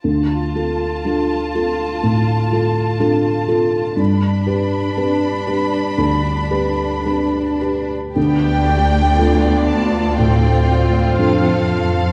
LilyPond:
<<
  \new Staff \with { instrumentName = "Violin section" } { \time 4/4 \key d \dorian \tempo 4 = 60 r1 | r1 | g''4. a''8 g''4 f''4 | }
  \new Staff \with { instrumentName = "Violin section" } { \time 4/4 \key d \dorian << { <f' a''>1 | <d' b''>1 | d''2. a'4 | } \\ { r1 | r1 | g'4 f'2. | } >> }
  \new Staff \with { instrumentName = "Felt piano" } { \time 4/4 \key d \dorian d,8 <f' a'>8 <d' f' a'>8 <f' a'>8 a,8 <f' a'>8 <d' f' a'>8 <f' a'>8 | g,8 <g' b'>8 <d' g' b'>8 <g' b'>8 d,8 <g' b'>8 <d' g' b'>8 <g' b'>8 | d,4 <d' f' a'>4 a,4 <d' f' a'>4 | }
  \new Staff \with { instrumentName = "Viola section" } { \time 4/4 \key d \dorian << { r1 | r1 | d'4 b4 a8 f'4. | } \\ { r1 | r1 | b8 a8 d'4 c'2 | } >> }
  \new Staff \with { instrumentName = "Cello section" } { \clef bass \time 4/4 \key d \dorian r1 | r1 | d,2. f,4 | }
>>